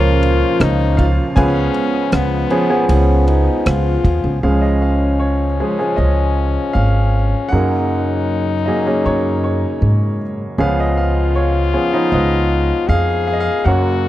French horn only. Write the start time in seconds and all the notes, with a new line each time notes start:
Already playing: F4
0.61 D#4
1.36 C#4
2.13 B3
2.89 C#4
3.27 D#4
3.67 F4
4.43 C#4
7.53 D#4
10.59 F4
12.88 G#4
13.66 F#4